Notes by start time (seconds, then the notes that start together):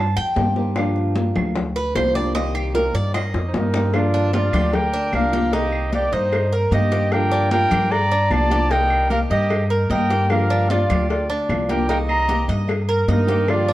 Already playing: G2 A5
0.16 F2 G5, high bongo, high conga
0.36 G2 D#3 A#3 C4 G4, high bongo, low bongo, high conga
0.56 D#3 A#3 C4 G4, high conga
0.76 D3 F3 A#3 D4 G4, high bongo, high conga, claves
0.96 high bongo, high conga
1.16 F3 A#3 D4 G4, high bongo, high conga
1.36 D2, high bongo, high conga, low conga, claves
1.55 muted nylon-string guitar stroke, high bongo, high conga, low conga
1.76 B4, high bongo, high conga
1.95 C2 F3 A#3 D4 G4 C5, high bongo, low bongo, high conga, claves
2.15 F3 A#3 D4 G4 D5, high conga
2.35 C3 D#3 A#3 C4 G4 D#5, high bongo, high conga
2.55 G4, high bongo, high conga, claves
2.74 D#3 A#3 C4 G4 A#4, high bongo, high conga
2.93 G2 D5, high bongo, high conga
3.14 D#5, muted nylon-string guitar stroke, high bongo, high conga, claves
3.34 F2, high bongo, high conga
3.47 D#4 C5
3.53 G2 D#3 A#3 C4 D#4 G4 A#4, high bongo, high conga
3.74 D#3 A#3 C4 G4, low bongo, high conga
3.93 D3 F3 A#3 D4 F4 G4 D5, cowbell, high conga, claves
4.14 D4, high conga
4.32 F3 A#3 D4 F4 G4 D5, cowbell, high conga
4.53 D2 G4, cowbell, high conga, low conga, claves
4.73 A#4 G5, muted nylon-string guitar stroke, cowbell, high conga, low conga
4.94 D4, high conga
5.12 C2 F3 A#3 D4 G4 A#4 F5, cowbell, high conga, claves
5.32 F3 A#3 D4 G4, cowbell, high conga
5.52 C3 D#3 A#3 C4 D#4 G4 D#5, cowbell
5.73 high conga, claves
5.92 D#3 A#3 C4 G4 D5, cowbell, high conga
6.12 G2 D#4 C5 D#5, cowbell, high conga
6.32 muted nylon-string guitar stroke, cowbell, high conga, claves
6.52 A#4, high conga
6.71 G2 D#3 A#3 C4 G4 D#5, cowbell, high conga
6.92 D#3 A#3 C4 G4, cowbell
7.11 D3 F3 A#3 D4 G4 A#4 G5, cowbell, high conga, claves
7.32 D4, high conga
7.51 F3 A#3 D4 F4 G4 A#4 G5, cowbell, high conga
7.71 G2 G4, cowbell, high conga, low conga, claves
7.91 D5 A#5, muted nylon-string guitar stroke, cowbell, high conga
8.11 D4, high conga
8.30 C2 F3 A#3 D4 G4 D5 A5, cowbell, high conga, claves
8.50 F3 A#3 D4 G4, cowbell, high conga
8.70 C3 D#3 A#3 C4 D#4 G4 A#4 G5, cowbell
8.90 high conga, claves
9.10 D#3 A#3 C4 G4 A#4 F5, cowbell, high conga
9.30 G2 G4 D#5, cowbell, high conga
9.50 muted nylon-string guitar stroke, cowbell, high conga, claves
9.70 A#4, high conga
9.90 G2 D#3 A#3 C4 G4 A#4 D#5 G5, cowbell, high conga
10.10 D#3 A#3 C4 G4, cowbell
10.30 D3 F3 A#3 D4 G4 A#4 F5, cowbell, high conga, claves
10.50 D4, high conga
10.69 F3 A#3 D4 F4 G4 D5, cowbell, high conga
10.90 D2 G4, cowbell, high conga, low conga, claves
11.09 F4 D5, muted nylon-string guitar stroke, cowbell, high conga
11.30 D4, high conga
11.49 C2 F3 A#3 D4 G4, cowbell, high conga, claves
11.69 F3 A#3 D4 G4 A#4 G5, cowbell, high conga
11.88 C3 D#3 A#3 C4 D#4 G4 A#4 G5, cowbell, high conga
12.08 D#5 A#5, high conga, claves
12.28 D#3 A#3 C4 G4, cowbell, high conga
12.48 G2 D#5, cowbell, high conga
12.68 muted nylon-string guitar stroke, cowbell, high conga, claves
12.89 A#4, high conga
13.08 G2 D#3 A#3 C4 D#4 G4 A#4 D#5, cowbell, high conga
13.27 D#3 A#3 C4 G4, cowbell, high conga
13.47 D3 F3 A#3 D4 F4 G4 D5, cowbell, high conga, claves
13.68 D4, high conga